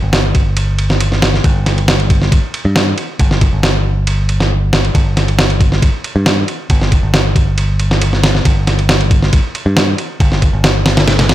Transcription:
0.02 picked electric bass G1
0.13 snare, ride
0.35 kick, ride
0.57 ride
0.79 ride
0.90 snare
1.00 ride
1.12 snare
1.22 snare, ride
1.34 snare
1.44 picked electric bass G1, kick, ride
1.66 snare, ride
1.78 ride
1.88 snare, ride
2.00 ride
2.10 kick, ride
2.22 snare
2.32 kick, ride
2.54 ride
2.65 picked electric bass G2
2.76 snare, ride
2.98 ride
3.19 picked electric bass G1, kick, ride
3.31 snare
3.41 kick, ride
3.53 picked electric bass G1
3.63 snare, ride
4.07 ride
4.29 ride
4.40 snare
4.73 snare, ride
4.85 ride
4.95 picked electric bass G1, kick, ride
5.17 snare, ride
5.28 ride
5.39 snare, ride
5.50 ride
5.61 kick, ride
5.72 snare
5.82 kick, ride
6.04 ride
6.16 picked electric bass G2
6.26 snare, ride
6.48 ride
6.70 picked electric bass G1, kick, ride
6.81 snare
6.92 kick, ride
7.03 picked electric bass G1
7.14 snare, ride
7.36 kick, ride
7.58 ride
7.80 ride
7.91 snare
8.02 ride
8.13 snare
8.24 snare, ride
8.35 snare
8.45 picked electric bass G1, kick, ride
8.67 snare, ride
8.79 ride
8.89 snare, ride
9.01 ride
9.11 kick, ride
9.22 snare
9.33 kick, ride
9.55 ride
9.66 picked electric bass G2
9.77 snare, ride
9.98 ride
10.20 picked electric bass G1, kick, ride
10.32 snare
10.42 kick, ride
10.53 picked electric bass G1
10.64 snare, ride
10.86 snare, ride
10.97 snare, ride
11.08 snare, ride
11.19 snare, ride
11.29 snare, ride

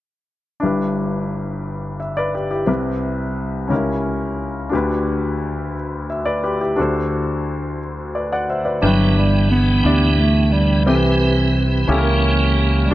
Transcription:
0.60 grand piano G1 G2 D4 E4
0.64 grand piano G4 B4
2.00 grand piano E5
2.17 grand piano B4 D5
2.34 grand piano G4 B4
2.51 grand piano E4 G4
2.66 grand piano C2 C3 C4 E4 G4 B4
3.68 grand piano C#2 C#3 C#4 D#4 G4 A#4
3.76 grand piano E4
4.69 grand piano D2 D3 D4 F#4 G4
4.75 grand piano B4
6.10 grand piano E5
6.25 grand piano B4 D5
6.43 grand piano G4 B4
6.61 grand piano E4 G4
6.76 grand piano D2 D3 D4 F#4 A4
6.81 grand piano C5
8.15 grand piano B4 D5
8.32 grand piano D5 F#5
8.50 grand piano C5 E5
8.65 grand piano B4 D5
8.82 fingered electric bass G1, grand piano G2 D4 E4 B4 G5, tonewheel organ E3 B3 D4 G5, bass clarinet F#3
9.18 bass clarinet G3
9.51 bass clarinet B3
9.84 fingered electric bass D2, grand piano D4 E4 G4 D5
10.13 bass clarinet B3
10.19 bass clarinet A3
10.53 bass clarinet G3
10.86 fingered electric bass C2, grand piano C3 C4 E4 G4 A4, tonewheel organ D#3 C4 G4 B4, bass clarinet E3
10.93 tonewheel organ E3, grand piano B4
11.88 fingered electric bass C#2, grand piano C#3 C#4 E4 G4 A4, tonewheel organ C#4
11.92 tonewheel organ E3 A#3 G4
11.98 grand piano A#4
12.85 bass clarinet G3
12.91 grand piano D4

